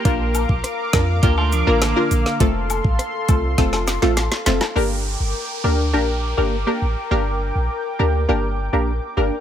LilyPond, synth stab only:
\new Staff \with { instrumentName = "Synth stab" } { \time 4/4 \key g \minor \tempo 4 = 102 <bes d' f' bes'>4. <bes d' f' bes'>8 <bes d' f' bes'>8. <bes d' f' bes'>16 r16 <bes d' f' bes'>16 r8 | <a c' f' a'>4. <a c' f' a'>8 <a c' f' a'>8. <a c' f' a'>16 r8 <a c' f' a'>16 r16 | <bes d' g' bes'>4. <bes d' g' bes'>8 <bes d' g' bes'>8. <bes d' g' bes'>16 r16 <bes d' g' bes'>16 r8 | <bes d' g' bes'>4. <bes d' g' bes'>8 <bes d' g' bes'>8. <bes d' g' bes'>16 r8 <bes d' g' bes'>16 r16 | }